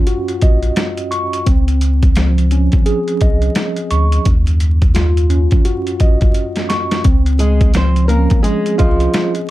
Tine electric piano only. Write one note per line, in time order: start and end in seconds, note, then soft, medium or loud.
0.00 1.47 F#2 medium
0.00 1.46 C#4 medium
0.00 1.46 F4 medium
0.07 1.47 F#4 loud
0.43 1.47 D#5 medium
1.11 1.46 C#6 medium
1.46 4.25 C4 medium
2.17 4.26 F3 medium
2.52 4.26 C#4 medium
2.86 4.26 G#4 medium
3.22 4.26 D#5 medium
3.91 4.26 C#6 medium
4.26 7.05 F#2 loud
4.94 7.04 F4 medium
5.30 7.05 C#4 medium
5.65 7.05 F#4 medium
6.01 7.05 D#5 medium
6.69 7.04 C#6 medium
7.04 9.50 C4 medium
7.75 9.50 F3 medium
8.10 9.50 C#4 medium
8.44 9.50 G#4 loud
8.80 9.50 D#5 medium